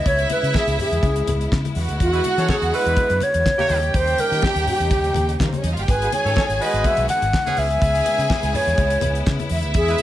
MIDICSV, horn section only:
0, 0, Header, 1, 2, 480
1, 0, Start_track
1, 0, Key_signature, 4, "minor"
1, 0, Tempo, 484653
1, 56, Time_signature, 4, 2, 24, 8
1, 9924, End_track
2, 0, Start_track
2, 0, Title_t, "Horn section"
2, 0, Program_c, 0, 61
2, 2107, Note_on_c, 0, 56, 72
2, 2109, Note_on_c, 0, 64, 71
2, 2109, Note_on_c, 0, 71, 74
2, 2176, Note_off_c, 0, 56, 0
2, 2177, Note_off_c, 0, 71, 0
2, 2178, Note_off_c, 0, 64, 0
2, 2348, Note_on_c, 0, 69, 75
2, 2348, Note_on_c, 0, 73, 86
2, 2349, Note_on_c, 0, 61, 80
2, 2440, Note_off_c, 0, 69, 0
2, 2440, Note_off_c, 0, 73, 0
2, 2441, Note_off_c, 0, 61, 0
2, 2458, Note_on_c, 0, 61, 91
2, 2460, Note_on_c, 0, 69, 86
2, 2461, Note_on_c, 0, 73, 100
2, 2537, Note_off_c, 0, 61, 0
2, 2538, Note_off_c, 0, 69, 0
2, 2538, Note_off_c, 0, 73, 0
2, 2700, Note_on_c, 0, 71, 115
2, 2701, Note_on_c, 0, 64, 102
2, 2703, Note_on_c, 0, 56, 108
2, 3154, Note_off_c, 0, 71, 0
2, 3155, Note_off_c, 0, 64, 0
2, 3156, Note_off_c, 0, 56, 0
2, 3544, Note_on_c, 0, 58, 103
2, 3545, Note_on_c, 0, 73, 116
2, 3546, Note_on_c, 0, 67, 105
2, 3740, Note_off_c, 0, 58, 0
2, 3740, Note_off_c, 0, 67, 0
2, 3740, Note_off_c, 0, 73, 0
2, 5951, Note_on_c, 0, 56, 68
2, 5951, Note_on_c, 0, 66, 62
2, 5952, Note_on_c, 0, 71, 76
2, 6018, Note_off_c, 0, 56, 0
2, 6019, Note_off_c, 0, 66, 0
2, 6019, Note_off_c, 0, 71, 0
2, 6190, Note_on_c, 0, 61, 74
2, 6190, Note_on_c, 0, 69, 73
2, 6190, Note_on_c, 0, 73, 83
2, 6280, Note_off_c, 0, 61, 0
2, 6280, Note_off_c, 0, 69, 0
2, 6280, Note_off_c, 0, 73, 0
2, 6301, Note_on_c, 0, 69, 89
2, 6301, Note_on_c, 0, 73, 93
2, 6302, Note_on_c, 0, 61, 91
2, 6378, Note_off_c, 0, 69, 0
2, 6378, Note_off_c, 0, 73, 0
2, 6379, Note_off_c, 0, 61, 0
2, 6542, Note_on_c, 0, 66, 107
2, 6543, Note_on_c, 0, 71, 125
2, 6544, Note_on_c, 0, 56, 107
2, 6993, Note_off_c, 0, 66, 0
2, 6993, Note_off_c, 0, 71, 0
2, 6994, Note_off_c, 0, 56, 0
2, 7386, Note_on_c, 0, 52, 97
2, 7386, Note_on_c, 0, 68, 107
2, 7387, Note_on_c, 0, 61, 102
2, 7579, Note_off_c, 0, 52, 0
2, 7579, Note_off_c, 0, 61, 0
2, 7579, Note_off_c, 0, 68, 0
2, 9783, Note_on_c, 0, 56, 73
2, 9783, Note_on_c, 0, 71, 76
2, 9784, Note_on_c, 0, 64, 75
2, 9850, Note_off_c, 0, 56, 0
2, 9851, Note_off_c, 0, 71, 0
2, 9852, Note_off_c, 0, 64, 0
2, 9924, End_track
0, 0, End_of_file